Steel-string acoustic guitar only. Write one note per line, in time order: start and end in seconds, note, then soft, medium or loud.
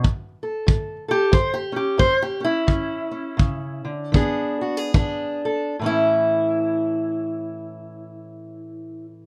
0.04 0.63 A2 medium
0.43 1.07 A4 soft
0.67 1.27 A2 medium
1.08 1.33 G4 loud
1.08 1.33 A4 medium
1.32 1.94 A2 medium
1.32 1.55 C5 medium
1.54 1.75 G4 medium
1.72 2.39 C#4 soft
1.76 1.99 G4 medium
1.98 2.62 A2 medium
1.98 2.22 C5 loud
2.22 2.44 G4 medium
2.40 2.65 C#4 soft
2.44 3.89 E4 loud
2.67 3.33 A2 medium
2.67 3.10 C#4 soft
3.11 4.11 C#4 soft
3.37 3.84 C#3 medium
3.85 4.15 D3 medium
4.12 4.87 E3 medium
4.12 5.75 B3 medium
4.12 4.93 D4 medium
4.12 4.61 G#4 medium
4.61 4.77 F#4 medium
4.77 5.45 G#4 medium
4.94 5.73 E3 medium
4.94 5.75 D4 medium
5.45 5.75 A4 medium
5.79 9.26 A2 medium
5.79 9.26 E3 medium
5.84 9.26 C#4 medium
5.84 9.05 E4 loud